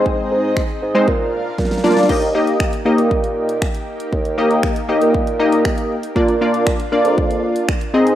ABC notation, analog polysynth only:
X:1
M:4/4
L:1/16
Q:1/4=118
K:Eb
V:1 name="Analog polysynth"
[A,CEc]4 z3 [A,CEc] z6 [B,DFd]2 | [B,EGe] z [B,EGe]3 z [B,EGe]6 z4 | z2 [B,EGe]3 z [B,EGe]3 z [B,EGe]4 z2 | [B,DFd] z [B,DFd]3 z [B,DFd]6 z2 [CEAe]2 |]